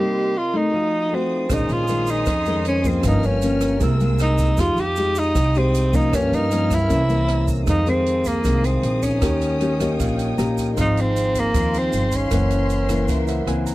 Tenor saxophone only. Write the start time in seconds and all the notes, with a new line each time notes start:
0.00 G4
0.37 F4
0.57 D#4
1.15 C4
1.54 D#4
1.72 F4
2.10 D#4
2.68 C#4
2.88 C4
3.08 D#4
3.26 C#4
4.22 D#4
4.60 F4
4.80 G4
5.19 D#4
5.58 C4
5.96 D#4
6.15 C#4
6.34 D#4
6.74 E4
7.69 D#4
7.89 C4
8.27 A#3
8.65 C4
9.03 C#4
10.80 D#4
11.01 C4
11.39 A#3
11.78 C4
12.16 C#4